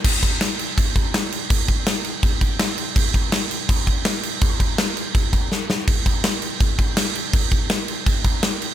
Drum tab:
CC |xxxxxxxx|xxxxxxxx|xxxxxxxx|xxxxxx--|
SD |--o---o-|--o---o-|--o---o-|--o---oo|
BD |oo--oo--|oo--oo--|oo--oo--|oo--oo--|

CC |xxxxxxxx|xxxxxxxx|
SD |--o---o-|--o---o-|
BD |oo--oo--|oo--oo--|